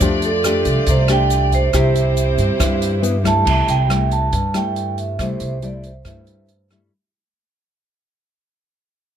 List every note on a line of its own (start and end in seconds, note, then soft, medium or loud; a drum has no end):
0.00 0.61 F2 medium
0.00 0.85 F3 medium
0.00 0.29 A3 soft
0.00 1.73 A3 medium
0.00 0.29 D4 medium
0.00 1.72 F4 medium
0.00 1.72 G4 medium
0.00 0.29 G4 medium
0.00 0.19 C5 soft
0.00 1.70 D5 medium
0.00 kick soft
0.00 closed hi-hat soft
0.00 shaker medium
0.22 0.91 A4 medium
0.22 closed hi-hat soft
0.22 shaker soft
0.44 0.87 A3 soft
0.44 0.88 D4 soft
0.44 0.88 G4 medium
0.44 cross-stick medium
0.44 closed hi-hat soft
0.44 shaker medium
0.65 0.76 C2 medium
0.65 kick soft
0.65 closed hi-hat soft
0.65 shaker soft
0.87 1.70 C2 medium
0.87 1.72 C3 medium
0.87 kick medium
0.87 closed hi-hat medium
0.87 shaker medium
0.91 1.11 C5 medium
1.08 1.70 A3 medium
1.08 1.70 D4 medium
1.08 1.70 G4 medium
1.08 1.55 G5 loud
1.08 cross-stick medium
1.08 closed hi-hat soft
1.08 shaker soft
1.30 closed hi-hat soft
1.30 shaker medium
1.52 3.01 C5 medium
1.52 kick soft
1.52 closed hi-hat soft
1.52 shaker soft
1.73 2.35 C2 medium
1.73 2.58 C3 medium
1.73 3.46 C4 medium
1.73 2.57 E4 medium
1.73 3.46 E4 medium
1.73 2.57 G4 medium
1.73 3.46 G4 medium
1.73 3.45 C5 medium
1.73 kick medium
1.73 cross-stick soft
1.73 closed hi-hat soft
1.73 shaker medium
1.95 3.28 G4 soft
1.95 closed hi-hat soft
1.95 shaker soft
2.17 closed hi-hat soft
2.17 shaker medium
2.38 2.48 G2 medium
2.38 kick soft
2.38 closed hi-hat soft
2.38 shaker soft
2.59 3.44 G2 soft
2.59 3.42 G2 medium
2.59 3.00 E4 medium
2.59 3.00 G4 medium
2.59 kick medium
2.59 cross-stick medium
2.59 closed hi-hat medium
2.59 shaker medium
2.82 closed hi-hat soft
2.82 shaker soft
3.02 3.15 B3 soft
3.02 3.16 E4 soft
3.02 3.16 G4 medium
3.02 closed hi-hat soft
3.02 shaker medium
3.24 3.86 G3 medium
3.24 3.86 A3 soft
3.24 3.86 E4 medium
3.24 3.70 A5 medium
3.24 kick soft
3.24 cross-stick soft
3.24 closed hi-hat soft
3.24 shaker soft
3.45 3.67 C2 medium
3.45 4.30 C3 soft
3.45 kick soft
3.45 crash medium
3.68 4.29 C2 medium
3.68 4.13 G5 medium
3.68 closed hi-hat soft
3.88 4.32 G3 soft
3.88 4.32 A3 soft
3.88 4.32 E4 soft
3.88 cross-stick medium
3.88 closed hi-hat soft
4.11 4.56 A5 medium
4.11 closed hi-hat soft
4.32 5.17 G2 soft
4.32 5.15 G2 medium
4.32 kick medium
4.32 closed hi-hat medium
4.54 5.16 G3 medium
4.54 5.16 A3 medium
4.54 5.16 E4 medium
4.54 4.95 G5 medium
4.54 cross-stick medium
4.54 closed hi-hat soft
4.76 closed hi-hat soft
4.98 5.20 E5 medium
4.98 closed hi-hat soft
5.19 5.39 C2 medium
5.19 6.04 C3 soft
5.19 5.59 G3 soft
5.19 5.59 A3 soft
5.19 5.60 E4 medium
5.19 5.41 C5 medium
5.19 kick soft
5.19 cross-stick soft
5.19 closed hi-hat soft
5.40 6.02 C2 medium
5.40 5.64 C5 medium
5.40 closed hi-hat soft
5.62 5.90 G3 soft
5.62 5.90 A3 medium
5.62 5.91 E4 medium
5.62 5.86 D5 medium
5.62 closed hi-hat soft
5.84 6.67 C5 medium
5.84 closed hi-hat soft
6.05 6.88 G2 medium
6.05 6.90 G2 soft
6.05 6.49 G3 soft
6.05 6.49 A3 soft
6.05 6.49 E4 medium
6.05 kick medium
6.05 cross-stick medium
6.05 closed hi-hat soft
6.27 closed hi-hat soft
6.48 closed hi-hat soft
6.71 6.91 G3 medium
6.71 6.91 A3 soft
6.71 6.91 E4 medium
6.71 cross-stick soft
6.71 closed hi-hat soft